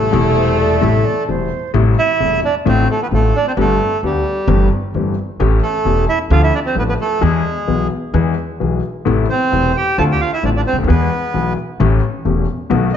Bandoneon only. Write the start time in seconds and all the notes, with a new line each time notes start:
Already playing: A3 A4
1.98 E4 E5
2.45 D4 D5
2.67 C4 C5
2.90 A3 A4
3.02 B3 B4
3.14 A3 A4
3.36 D4 D5
3.47 C4 C5
3.60 A3 A4
4.05 G3 G4
5.62 A3 A4
6.09 E4 E5
6.32 F4 F5
6.43 E4 E5
6.54 D4 D5
6.65 C4 C5
6.78 B3 B4
6.89 B3 B4
7.00 A3 A4
7.23 G#3 G#4
9.30 C4 C5
9.77 G4 G5
9.98 A4 A5
10.12 G4 G5
10.21 F4 F5
10.33 E4 E5
10.45 D4 D5
10.57 D4 D5
10.67 C4 C5
10.89 B3 B4